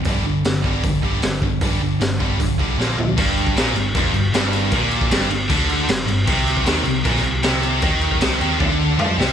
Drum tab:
CC |----------------|----------------|x-x-x-x-x-x-x-x-|x-x-x-x-x-x-x-x-|
HH |o---o---o---o---|o---o---o-------|----------------|----------------|
SD |----o-------o---|----o-------o---|----o-------o---|----o-------o---|
T1 |----------------|----------------|----------------|----------------|
T2 |----------------|----------------|----------------|----------------|
FT |----------------|--------------o-|----------------|----------------|
BD |o-----o-o-o---o-|o-----o-o-o-----|o--o----o-------|o--o----o-------|

CC |x-x-x-x-x-x-x-x-|x-x-x-x---------|
HH |----------------|----------------|
SD |----o----o--o---|----o---------o-|
T1 |----------------|--------o-------|
T2 |----------------|------------o---|
FT |----------------|----------------|
BD |o--o----o-------|o--o----o-------|